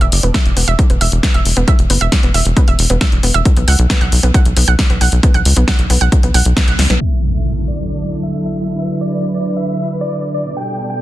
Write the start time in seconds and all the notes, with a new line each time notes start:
0.01 E1 E5, closed hi-hat
0.12 F#1, open hi-hat
0.23 E1 B3, closed hi-hat
0.34 E5, kick, snare, closed hi-hat
0.45 E1, closed hi-hat
0.57 E1 B3, open hi-hat
0.68 E1 E5, closed hi-hat
0.79 kick, closed hi-hat
0.90 E1 B3, closed hi-hat
1.01 E1 E5, open hi-hat
1.12 E1, closed hi-hat
1.23 B3, kick, snare, closed hi-hat
1.34 E1 E5, closed hi-hat
1.45 E1, open hi-hat
1.57 E1 B3, closed hi-hat
1.68 E5, kick, closed hi-hat
1.79 E1, closed hi-hat
1.90 F#1 B3, open hi-hat
2.01 E1 E5, closed hi-hat
2.12 kick, snare, closed hi-hat
2.23 E1 B3, closed hi-hat
2.34 E1 E5, open hi-hat
2.45 E1, closed hi-hat
2.57 B3, kick, closed hi-hat
2.68 E1 E5, closed hi-hat
2.79 E1, open hi-hat
2.90 E1 B3, closed hi-hat
3.01 E5, kick, snare, closed hi-hat
3.12 E1, closed hi-hat
3.23 E1 B3, open hi-hat
3.34 E1 E5, closed hi-hat
3.45 kick, closed hi-hat
3.57 B1 B3, closed hi-hat
3.68 C#2 F#5, open hi-hat
3.79 B1, closed hi-hat
3.90 B3, kick, snare, closed hi-hat
4.01 B1 F#5, closed hi-hat
4.12 B1, open hi-hat
4.23 B1 B3, closed hi-hat
4.34 F#5, kick, closed hi-hat
4.46 B1, closed hi-hat
4.57 B1 B3, open hi-hat
4.68 B1 F#5, closed hi-hat
4.79 kick, snare, closed hi-hat
4.90 B1 B3, closed hi-hat
5.01 B1 F#5, open hi-hat
5.12 B1, closed hi-hat
5.23 B3, kick, closed hi-hat
5.34 B1 F#5, closed hi-hat
5.45 C#2, open hi-hat
5.57 B1 B3, closed hi-hat
5.68 F#5, kick, snare, closed hi-hat
5.79 B1, closed hi-hat
5.90 B1 B3, open hi-hat
6.01 B1 F#5, closed hi-hat
6.12 kick, closed hi-hat
6.23 B1 B3, closed hi-hat
6.34 B1 F#5, open hi-hat
6.45 B1, closed hi-hat
6.57 B3, kick, snare, closed hi-hat
6.68 B1 F#5, closed hi-hat
6.79 C#2, snare, open hi-hat
6.90 B1 B3, snare, closed hi-hat
7.01 D3 F#3 E4 A4 E5, impact
7.34 E5
7.68 D5
7.90 D5
8.23 E5
8.45 E5
8.57 closed hi-hat
8.79 B4 E5
9.01 D5
9.34 D5
9.46 closed hi-hat
9.57 E5
9.68 closed hi-hat
9.90 closed hi-hat
10.01 D5
10.12 closed hi-hat
10.23 closed hi-hat
10.34 D5, closed hi-hat
10.46 closed hi-hat
10.57 B2 G3 D4 A4 G5, closed hi-hat
10.68 closed hi-hat
10.79 closed hi-hat
10.90 G5, closed hi-hat